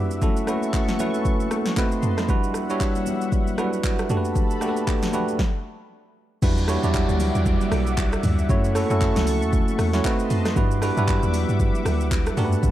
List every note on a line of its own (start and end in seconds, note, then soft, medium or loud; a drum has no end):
0.00 0.20 G3 medium
0.00 0.24 G3 medium
0.00 0.24 D4 medium
0.00 0.22 E4 medium
0.00 0.23 F#4 medium
0.00 0.24 B4 medium
0.00 1.73 E5 medium
0.00 1.73 F#5 medium
0.00 0.20 D6 medium
0.11 shaker medium
0.21 0.43 A3 medium
0.21 0.43 C#4 medium
0.21 0.44 E4 medium
0.21 0.44 F#4 medium
0.21 1.76 A4 medium
0.21 0.44 A4 medium
0.21 1.76 C#6 medium
0.21 kick loud
0.21 low conga medium
0.21 shaker medium
0.37 shaker medium
0.47 0.91 A3 medium
0.47 0.91 C#4 medium
0.47 0.91 E4 medium
0.47 0.91 F#4 medium
0.47 0.91 B4 medium
0.47 cross-stick medium
0.47 high conga medium
0.47 shaker medium
0.63 shaker medium
0.73 kick medium
0.73 clap medium
0.73 shaker medium
0.88 snare medium
0.88 high conga medium
0.88 shaker medium
0.99 1.76 A3 medium
0.99 1.77 C#4 medium
0.99 1.77 E4 medium
0.99 1.77 F#4 medium
0.99 1.77 B4 medium
0.99 high conga medium
0.99 low conga medium
0.99 shaker loud
1.14 shaker soft
1.25 kick loud
1.25 low conga medium
1.25 shaker medium
1.40 high conga medium
1.40 shaker soft
1.51 cross-stick loud
1.51 high conga medium
1.51 shaker medium
1.66 snare medium
1.66 shaker medium
1.77 2.20 A3 medium
1.77 2.20 C4 medium
1.77 2.20 D#4 medium
1.77 2.20 F#4 medium
1.77 2.28 B4 medium
1.77 2.21 B4 loud
1.77 2.28 D#5 medium
1.77 2.28 A5 medium
1.77 2.28 C6 medium
1.77 kick medium
1.77 clap loud
1.77 shaker medium
1.92 shaker medium
2.03 mid tom medium
2.03 high conga medium
2.03 shaker medium
2.18 cross-stick medium
2.18 snare medium
2.18 shaker medium
2.28 2.61 G3 medium
2.28 4.08 G3 medium
2.28 2.61 D4 medium
2.28 2.61 E4 medium
2.28 2.61 F#4 medium
2.28 2.61 B4 loud
2.28 4.08 E5 medium
2.28 5.36 F#5 medium
2.28 kick loud
2.28 low conga medium
2.28 shaker medium
2.44 shaker medium
2.54 cross-stick medium
2.54 high conga medium
2.54 shaker medium
2.70 3.41 G3 medium
2.70 3.41 D4 medium
2.70 3.41 E4 medium
2.70 3.42 F#4 medium
2.70 3.42 C#5 loud
2.70 shaker medium
2.80 kick medium
2.80 clap medium
2.80 shaker medium
2.95 high conga medium
2.95 shaker medium
3.06 high conga medium
3.06 low conga medium
3.06 shaker loud
3.21 shaker medium
3.32 kick loud
3.32 low conga medium
3.32 shaker medium
3.47 high conga medium
3.47 shaker soft
3.58 3.65 F#3 medium
3.58 4.09 D4 medium
3.58 4.10 E4 medium
3.58 4.09 F#4 medium
3.58 4.10 B4 medium
3.58 cross-stick loud
3.58 high conga medium
3.58 shaker medium
3.64 4.13 G3 medium
3.73 shaker medium
3.84 kick medium
3.84 clap loud
3.84 shaker medium
3.99 cross-stick medium
3.99 shaker medium
4.10 4.53 A3 medium
4.10 4.53 D4 medium
4.10 4.53 F#4 medium
4.10 4.53 G4 medium
4.10 5.38 A4 medium
4.10 4.18 A4 medium
4.10 5.38 A5 medium
4.10 5.38 B5 medium
4.10 mid tom medium
4.10 high conga medium
4.10 shaker medium
4.17 4.57 B4 loud
4.25 shaker medium
4.35 kick loud
4.35 low conga medium
4.35 shaker medium
4.51 shaker medium
4.61 5.04 A3 medium
4.61 5.05 D4 medium
4.61 5.05 F#4 medium
4.61 5.05 G4 medium
4.61 4.69 A4 medium
4.61 cross-stick medium
4.61 high conga medium
4.61 shaker medium
4.69 5.08 B4 medium
4.77 shaker medium
4.87 kick medium
4.87 clap medium
4.87 shaker medium
5.03 snare medium
5.03 high conga medium
5.03 shaker medium
5.13 5.39 A3 medium
5.13 5.39 D4 medium
5.13 5.39 F#4 medium
5.13 5.40 G4 medium
5.13 5.40 B4 medium
5.13 high conga medium
5.13 low conga medium
5.13 shaker loud
5.28 shaker soft
5.39 kick loud
5.39 snare medium
6.42 6.78 E2 loud
6.42 6.64 G3 medium
6.42 8.47 G3 medium
6.42 6.64 D4 medium
6.42 6.64 E4 medium
6.42 6.64 F#4 medium
6.42 6.65 B4 loud
6.42 10.01 E5 medium
6.42 10.01 F#5 medium
6.42 8.47 D6 medium
6.42 kick loud
6.42 crash loud
6.42 downlifter medium
6.42 low conga medium
6.42 shaker medium
6.58 shaker medium
6.68 6.80 G3 medium
6.68 6.80 D4 medium
6.68 6.81 E4 medium
6.68 6.81 F#4 medium
6.68 6.81 C#5 medium
6.68 cross-stick medium
6.68 open hi-hat medium
6.68 high conga medium
6.68 shaker loud
6.83 7.06 E2 medium
6.83 6.89 F#3 medium
6.83 7.65 D4 medium
6.83 7.66 E4 medium
6.83 7.66 F#4 medium
6.83 7.66 D5 loud
6.83 shaker medium
6.89 7.68 G3 medium
6.94 kick medium
6.94 clap medium
6.94 shaker medium
7.09 7.32 D2 medium
7.09 high conga medium
7.09 shaker medium
7.20 open hi-hat medium
7.20 high conga medium
7.20 low conga medium
7.20 shaker loud
7.35 7.58 E2 medium
7.35 shaker medium
7.46 kick loud
7.46 low conga medium
7.46 shaker medium
7.61 high conga medium
7.61 shaker medium
7.72 8.17 B1 medium
7.72 cross-stick loud
7.72 open hi-hat soft
7.72 high conga medium
7.72 shaker medium
7.87 shaker medium
7.97 kick loud
7.97 clap loud
7.97 shaker medium
8.13 cross-stick medium
8.13 shaker medium
8.23 8.46 D2 loud
8.23 mid tom medium
8.23 open hi-hat soft
8.23 high conga medium
8.23 shaker medium
8.39 shaker medium
8.49 8.85 F#2 loud
8.49 8.71 A3 medium
8.49 8.71 C#4 medium
8.49 8.71 E4 medium
8.49 8.71 F#4 medium
8.49 10.03 A4 medium
8.49 8.71 C#5 loud
8.49 10.03 C#6 medium
8.49 kick loud
8.49 low conga medium
8.49 shaker medium
8.64 shaker medium
8.75 8.87 A3 medium
8.75 8.87 C#4 medium
8.75 8.87 E4 medium
8.75 8.88 F#4 medium
8.75 8.88 A4 loud
8.75 cross-stick medium
8.75 open hi-hat medium
8.75 high conga medium
8.75 shaker loud
8.90 9.13 F#2 loud
8.90 9.72 A3 medium
8.90 9.72 C#4 medium
8.90 9.72 E4 medium
8.90 9.73 F#4 medium
8.90 9.73 A4 loud
8.90 shaker medium
9.01 kick loud
9.01 clap medium
9.01 shaker medium
9.16 9.44 C#2 medium
9.16 snare medium
9.16 high conga medium
9.16 shaker medium
9.27 open hi-hat medium
9.27 high conga medium
9.27 low conga medium
9.27 shaker loud
9.42 9.64 E2 medium
9.42 shaker medium
9.53 kick loud
9.53 low conga medium
9.53 shaker medium
9.68 high conga medium
9.68 shaker medium
9.79 10.01 E2 loud
9.79 cross-stick loud
9.79 open hi-hat soft
9.79 high conga medium
9.79 shaker medium
9.93 10.03 A3 medium
9.93 10.05 C#4 medium
9.93 10.05 E4 medium
9.93 10.04 F#4 medium
9.93 10.05 C#5 loud
9.93 snare medium
9.93 shaker medium
10.04 10.48 A3 loud
10.04 10.48 C4 medium
10.04 10.48 D#4 medium
10.04 10.48 F#4 medium
10.04 10.56 B4 medium
10.04 10.48 B4 loud
10.04 10.56 D#5 medium
10.04 10.56 A5 medium
10.04 10.56 C6 medium
10.04 kick medium
10.04 clap loud
10.04 shaker medium
10.19 shaker medium
10.30 mid tom loud
10.30 open hi-hat soft
10.30 high conga medium
10.30 shaker medium
10.45 cross-stick medium
10.45 snare medium
10.45 shaker medium
10.56 10.92 G2 loud
10.56 10.78 G3 medium
10.56 12.35 G3 medium
10.56 10.78 D4 medium
10.56 10.78 E4 medium
10.56 10.78 F#4 medium
10.56 10.78 B4 loud
10.56 12.35 E5 medium
10.56 12.71 F#5 medium
10.56 12.36 D6 medium
10.56 kick loud
10.56 low conga medium
10.56 shaker medium
10.71 shaker medium
10.81 10.94 G3 medium
10.81 10.94 D4 medium
10.81 10.95 E4 medium
10.81 10.95 F#4 medium
10.81 10.95 B4 medium
10.81 cross-stick medium
10.81 open hi-hat medium
10.81 high conga medium
10.81 shaker loud
10.97 11.20 G2 loud
10.97 11.02 F#3 medium
10.97 11.79 D4 medium
10.97 11.79 E4 medium
10.97 11.80 F#4 medium
10.97 11.80 B4 loud
10.97 shaker medium
11.03 11.82 G3 medium
11.08 kick loud
11.08 clap medium
11.08 shaker medium
11.23 11.46 E2 loud
11.23 high conga medium
11.23 shaker medium
11.34 open hi-hat medium
11.34 high conga medium
11.34 low conga medium
11.34 shaker loud
11.49 11.71 G2 loud
11.49 shaker medium
11.60 kick loud
11.60 low conga medium
11.60 shaker medium
11.75 high conga medium
11.75 shaker medium
11.85 12.30 D2 medium
11.85 cross-stick loud
11.85 open hi-hat soft
11.85 high conga medium
11.85 shaker medium
12.01 shaker medium
12.11 kick medium
12.11 clap loud
12.11 shaker medium
12.26 cross-stick medium
12.26 shaker medium
12.37 12.60 G2 loud
12.37 12.71 A3 loud
12.37 12.71 D4 medium
12.37 12.71 F#4 medium
12.37 12.71 G4 medium
12.37 12.71 A4 medium
12.37 12.45 A#4 medium
12.37 12.71 A5 medium
12.37 12.71 B5 medium
12.37 mid tom loud
12.37 open hi-hat soft
12.37 high conga medium
12.37 shaker medium
12.45 12.71 B4 loud
12.52 shaker medium
12.63 12.71 G2 loud
12.63 kick loud
12.63 low conga medium
12.63 shaker medium